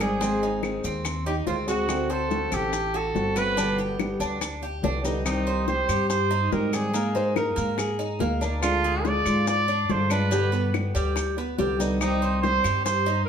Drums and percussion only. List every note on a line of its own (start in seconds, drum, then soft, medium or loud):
0.01 high bongo soft
0.01 claves medium
0.01 maracas medium
0.21 high bongo medium
0.21 maracas medium
0.42 high bongo soft
0.42 maracas soft
0.63 high bongo medium
0.63 claves medium
0.63 maracas soft
0.84 maracas medium
1.05 high bongo medium
1.05 claves medium
1.05 maracas medium
1.26 high bongo soft
1.26 maracas soft
1.47 high bongo soft
1.47 low bongo medium
1.47 maracas soft
1.68 high bongo soft
1.68 maracas medium
1.89 high bongo medium
1.89 claves medium
1.89 maracas medium
2.10 high bongo soft
2.10 maracas soft
2.31 high bongo medium
2.31 maracas soft
2.52 claves medium
2.52 maracas medium
2.73 high bongo medium
2.73 maracas medium
2.94 high bongo soft
2.94 maracas soft
3.16 high bongo soft
3.16 low bongo medium
3.16 maracas soft
3.36 high bongo soft
3.36 claves medium
3.36 maracas medium
3.57 high bongo medium
3.57 maracas medium
3.79 high bongo soft
3.79 maracas soft
4.00 high bongo medium
4.00 claves medium
4.00 maracas soft
4.21 maracas medium
4.41 high bongo medium
4.41 claves medium
4.41 maracas medium
4.62 high bongo soft
4.62 maracas soft
4.84 high bongo soft
4.84 low bongo medium
4.84 maracas soft
5.04 high bongo soft
5.04 maracas medium
5.26 high bongo medium
5.26 claves medium
5.26 maracas medium
5.47 high bongo soft
5.47 maracas soft
5.68 high bongo medium
5.68 maracas soft
5.89 claves medium
5.89 maracas medium
6.10 high bongo medium
6.10 maracas medium
6.31 high bongo soft
6.31 maracas soft
6.52 high bongo soft
6.52 low bongo medium
6.52 maracas soft
6.73 high bongo soft
6.73 claves medium
6.73 maracas medium
6.94 high bongo medium
6.94 maracas medium
7.15 high bongo soft
7.15 maracas soft
7.36 high bongo medium
7.36 claves medium
7.36 maracas soft
7.57 maracas medium
7.78 high bongo medium
7.78 claves medium
7.78 maracas medium
8.00 high bongo soft
8.00 maracas soft
8.20 high bongo soft
8.20 low bongo medium
8.20 maracas soft
8.41 high bongo soft
8.41 maracas medium
8.63 high bongo medium
8.63 claves medium
8.63 maracas medium
8.84 high bongo soft
8.84 maracas soft
9.05 high bongo medium
9.05 maracas soft
9.26 claves medium
9.26 maracas medium
9.47 high bongo medium
9.47 maracas medium
9.68 high bongo soft
9.68 maracas soft
9.89 high bongo soft
9.89 low bongo medium
9.89 maracas soft
10.10 high bongo soft
10.10 claves medium
10.10 maracas medium
10.32 high bongo medium
10.32 maracas medium
10.53 high bongo soft
10.53 maracas soft
10.74 high bongo medium
10.74 claves medium
10.74 maracas soft
10.96 maracas medium
11.16 high bongo medium
11.16 claves medium
11.16 maracas medium
11.37 high bongo soft
11.37 maracas soft
11.58 high bongo soft
11.58 low bongo medium
11.58 maracas soft
11.80 high bongo soft
11.80 maracas medium
12.01 high bongo medium
12.01 claves medium
12.01 maracas medium
12.22 high bongo soft
12.22 maracas soft
12.44 high bongo medium
12.44 maracas soft
12.64 claves medium
12.64 maracas medium
12.86 high bongo medium
12.86 maracas medium
13.07 high bongo soft
13.07 maracas soft